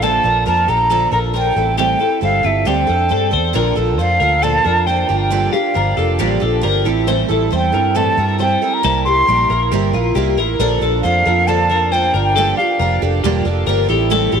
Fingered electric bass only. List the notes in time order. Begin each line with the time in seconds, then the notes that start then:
Already playing: A#1
0.24 A#1
0.47 F2
0.68 A#1
1.12 A#1
1.56 A1
2.22 G1
2.44 G1
2.66 D2
2.89 F2
3.11 G2
3.33 E2
3.55 A#1
3.77 A#1
3.99 F2
4.20 D2
4.65 F2
5.10 G1
5.76 G1
5.98 F1
6.19 A1
6.42 A#1
6.64 G1
6.85 A1
7.30 A1
7.52 E2
7.74 G2
8.17 G2
8.84 C2
9.28 A#1
9.50 A#1
9.72 G1
9.93 A#1
10.16 C2
10.37 A1
10.59 A#1
10.81 A#1
11.04 F2
11.26 F2
12.14 G1
12.80 F1
13.02 F1
13.24 E1
13.45 F1
13.67 G1
13.89 A1
14.33 A1